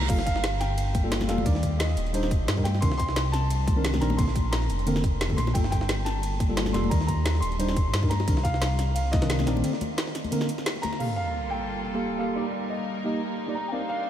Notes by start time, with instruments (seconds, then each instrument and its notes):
0.02 snare, high bongo
0.08 detuned saw bass G1, tine electric piano G3 A#3 F4 A4, grand piano F5, kick, closed hi-hat, crash, ride bell
0.19 snare
0.26 grand piano F5, kick, snare, closed hi-hat, ride bell
0.36 snare
0.44 snare, closed hi-hat, ride bell
0.60 grand piano G5, snare, closed hi-hat, ride bell
0.78 closed hi-hat, ride bell
0.95 kick, closed hi-hat, ride bell, high conga
1.03 tine electric piano G3 A#3 F4 A4
1.12 snare, closed hi-hat, ride bell
1.21 snare, high bongo, high conga
1.28 detuned saw bass F1, tine electric piano G3 A#3 F4 A4, grand piano F5, snare, closed hi-hat, ride bell, high bongo
1.38 high conga
1.45 detuned saw bass D#2, tine electric piano G3 D4 D#4 A#4, grand piano D5, kick, closed hi-hat, ride bell
1.55 snare
1.63 kick, closed hi-hat, ride bell
1.79 grand piano D#5, snare, closed hi-hat, ride bell
1.89 snare
1.97 detuned saw bass D#1, closed hi-hat, ride bell
2.07 closed hi-hat
2.13 tine electric piano G3 D4 D#4 C5, closed hi-hat, ride bell
2.23 snare
2.31 kick, closed hi-hat, ride bell
2.40 detuned saw bass A#1
2.48 detuned saw bass G2, snare, closed hi-hat, ride bell
2.57 tine electric piano G3 D4 D#4 A#4, kick, high bongo
2.64 grand piano G5, snare, closed hi-hat, ride bell, high conga
2.74 snare, high bongo
2.81 detuned saw bass C2, tine electric piano D#3 C4 D4 A#4, grand piano C6, kick, closed hi-hat, ride bell
2.92 snare
2.97 grand piano C6, kick, snare, closed hi-hat, ride bell
3.09 snare
3.16 snare, closed hi-hat, ride bell
3.32 grand piano A5, snare, closed hi-hat, ride bell
3.50 closed hi-hat, ride bell
3.67 kick, closed hi-hat, ride bell, high conga
3.76 tine electric piano D#3 C4 D4 A#4
3.85 snare, closed hi-hat, ride bell
3.93 snare, high bongo, high conga
4.00 detuned saw bass A#1, tine electric piano D#3 C4 D4 A#4, grand piano A#5, snare, closed hi-hat, ride bell, high bongo
4.10 high conga
4.17 detuned saw bass A#1, tine electric piano D3 A#3 C4 A4, grand piano C6, kick, closed hi-hat, ride bell
4.28 snare
4.35 kick, closed hi-hat, ride bell, high bongo, high conga
4.51 grand piano A#5, snare, closed hi-hat, ride bell
4.62 snare
4.70 detuned saw bass F1, closed hi-hat, ride bell
4.79 closed hi-hat
4.86 tine electric piano D3 A#3 C4 A#4, closed hi-hat, ride bell
4.96 snare
5.04 kick, closed hi-hat, ride bell
5.21 detuned saw bass F1, snare, closed hi-hat, ride bell
5.29 tine electric piano D3 A#3 C4 A4, kick, high bongo
5.37 detuned saw bass A#1, grand piano C6, snare, closed hi-hat, ride bell, high conga
5.47 snare, high bongo
5.54 detuned saw bass G1, tine electric piano G3 A#3 F4 A4, grand piano G5, kick, closed hi-hat, ride bell
5.64 snare
5.71 grand piano G5, kick, snare, closed hi-hat, ride bell
5.81 snare
5.89 snare, closed hi-hat, ride bell
6.05 grand piano A5, snare, closed hi-hat, ride bell
6.23 closed hi-hat, ride bell
6.40 kick, closed hi-hat, ride bell, high conga
6.49 tine electric piano G3 A#3 F4 A4
6.57 snare, closed hi-hat, ride bell
6.66 snare, high bongo, high conga
6.73 detuned saw bass F1, tine electric piano G3 A#3 F4 A4, grand piano C6, snare, closed hi-hat, ride bell, high bongo
6.84 high conga
6.89 detuned saw bass D#2, tine electric piano G3 D4 D#4 A#4, grand piano A#5, kick, closed hi-hat, ride bell
7.01 snare
7.07 grand piano A#5, kick, closed hi-hat, ride bell
7.26 snare, closed hi-hat, ride bell
7.35 snare
7.40 detuned saw bass D#1, grand piano C6, closed hi-hat, ride bell
7.52 closed hi-hat
7.59 tine electric piano G3 D4 D#4 C5, closed hi-hat, ride bell
7.69 snare
7.77 kick, closed hi-hat, ride bell
7.86 detuned saw bass A#1
7.94 detuned saw bass G2, snare, closed hi-hat, ride bell
8.02 tine electric piano G3 D4 D#4 A#4, kick, high bongo
8.09 grand piano A#5, snare, closed hi-hat, ride bell, high conga
8.20 snare, high bongo
8.27 detuned saw bass C2, tine electric piano D#3 C4 D4 A#4, kick, closed hi-hat, ride bell
8.37 snare
8.43 grand piano F5, kick, snare, closed hi-hat, ride bell
8.54 snare
8.62 snare, closed hi-hat, ride bell
8.79 snare, closed hi-hat, ride bell
8.95 grand piano F5, closed hi-hat, ride bell
9.12 grand piano D#5, kick, snare, closed hi-hat, ride bell, high conga
9.21 tine electric piano D#3 C4 D4 A#4, snare, closed hi-hat
9.30 snare, closed hi-hat, ride bell
9.39 snare, high bongo, high conga
9.46 detuned saw bass A#1, tine electric piano D#3 C4 D4 A#4, grand piano D5, snare, closed hi-hat, ride bell, high bongo
9.57 high conga
9.63 tine electric piano D3 A#3 C4 A4, closed hi-hat, ride bell
9.73 snare
9.81 closed hi-hat, ride bell, high bongo, high conga
9.98 snare, closed hi-hat, ride bell
10.07 snare
10.15 snare, closed hi-hat, ride bell
10.24 closed hi-hat, high conga
10.31 tine electric piano D3 A#3 C4 A#4, closed hi-hat, ride bell
10.41 snare, high bongo
10.49 closed hi-hat, ride bell
10.58 snare
10.66 snare, closed hi-hat, ride bell
10.76 high bongo
10.82 grand piano A#5, snare, closed hi-hat, ride bell, high conga
10.93 snare, high bongo
10.99 string section G3 A#3 F4 A4, tine electric piano A#3 G4 A4 F5, grand piano F5, crash, sub drop
11.16 grand piano F5
11.50 grand piano G5
11.94 tine electric piano A#3 G4 A4 F5
12.19 tine electric piano A#3 G4 A4 F5, grand piano F5
12.35 tine electric piano A#3 D#4 G4 D5, string section A#3 D#4 A#4, grand piano D5
12.70 grand piano D#5
13.04 tine electric piano A#3 D#4 G4 D#5
13.47 tine electric piano A#3 D#4 G4 D5
13.55 grand piano A#5
13.68 grand piano F5 G5
13.72 string section A#3 D4 C5, tine electric piano C4 D#4 A#4 D5
13.89 grand piano F5